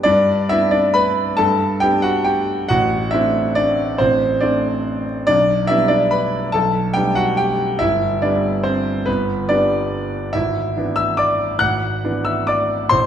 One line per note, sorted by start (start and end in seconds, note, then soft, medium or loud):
0.03 0.49 G2 medium
0.03 0.47 D4 medium
0.03 0.50 D5 loud
0.49 1.35 B3 medium
0.49 0.71 D4 medium
0.49 0.71 E4 medium
0.49 0.72 E5 loud
0.71 0.93 D4 medium
0.71 0.94 D5 medium
0.94 1.35 B4 medium
0.94 1.38 B5 loud
1.37 1.81 G2 medium
1.37 1.78 A4 medium
1.37 1.81 A5 loud
1.80 2.66 B3 soft
1.80 2.66 D4 medium
1.80 2.02 G4 medium
1.80 2.03 G5 loud
2.02 2.24 F#4 medium
2.02 2.25 F#5 medium
2.24 2.66 G4 medium
2.24 2.69 G5 medium
2.69 3.12 A1 medium
2.69 3.10 F#4 medium
2.69 3.12 F#5 loud
3.11 3.97 A3 soft
3.11 3.97 C4 soft
3.11 3.55 D4 medium
3.11 3.54 E4 medium
3.11 3.56 E5 medium
3.55 3.97 D4 medium
3.55 4.00 D5 loud
3.98 4.42 A1 medium
3.98 4.39 C4 medium
3.98 4.42 C5 medium
4.41 5.25 A3 soft
4.41 5.25 C4 soft
4.41 5.04 D4 medium
4.41 5.07 D5 medium
5.27 5.68 B1 medium
5.27 5.66 D4 medium
5.27 5.69 D5 loud
5.67 6.51 G3 soft
5.67 6.51 B3 medium
5.67 5.88 D4 medium
5.67 5.89 E4 medium
5.67 5.90 E5 loud
5.88 6.10 D4 medium
5.88 6.11 D5 medium
6.11 6.51 B4 medium
6.11 6.54 B5 medium
6.52 6.95 B1 medium
6.52 6.93 A4 medium
6.52 6.95 A5 loud
6.94 7.77 G3 soft
6.94 7.77 B3 soft
6.94 7.78 D4 soft
6.94 7.15 G4 medium
6.94 7.16 G5 loud
7.15 7.37 F#4 medium
7.15 7.38 F#5 medium
7.37 7.78 G4 medium
7.37 7.81 G5 medium
7.79 8.22 G1 medium
7.79 8.20 E4 medium
7.79 8.22 E5 loud
8.22 9.04 G3 soft
8.22 9.04 B3 soft
8.22 8.62 D4 medium
8.22 8.65 D5 medium
8.64 9.04 C4 medium
8.64 9.06 C5 medium
9.06 9.49 G1 medium
9.06 9.47 B3 medium
9.06 9.49 B4 medium
9.49 10.31 G3 medium
9.49 10.31 B3 soft
9.49 10.10 D4 medium
9.49 10.14 D5 medium
10.33 10.75 G#1 medium
10.33 10.93 E4 medium
10.33 10.95 E5 loud
10.77 11.57 E3 soft
10.77 11.58 B3 soft
10.77 11.58 D4 soft
10.96 11.17 E5 medium
10.96 11.18 E6 loud
11.17 11.58 D5 medium
11.17 11.60 D6 medium
11.59 12.02 G#1 medium
11.59 12.21 F#5 medium
11.59 12.25 F#6 loud
12.04 12.87 E3 soft
12.04 12.87 B3 soft
12.04 12.88 D4 medium
12.25 12.47 E5 medium
12.25 12.47 E6 medium
12.47 12.88 D5 medium
12.47 12.91 D6 medium
12.89 13.06 A1 medium
12.89 13.06 C5 medium
12.89 13.06 C6 loud